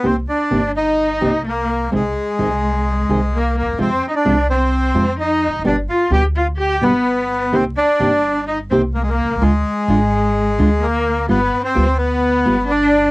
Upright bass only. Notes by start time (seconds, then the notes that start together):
0.05 C2
0.52 G1
1.22 C2
1.93 C2
2.39 C2
3.09 C2
3.62 D2
3.67 D#2
3.73 E2
3.80 F2
4.26 C2
4.94 F2
5.48 E1
5.53 F1
5.59 F#1
5.65 G1
6.11 D2
6.82 G1
7.53 C2
8.00 G1
8.72 C2
9.25 B1
9.30 C2
9.36 C#2
9.42 D2
9.88 G#1
10.59 D2
11.29 G1
11.76 D2
12.46 G1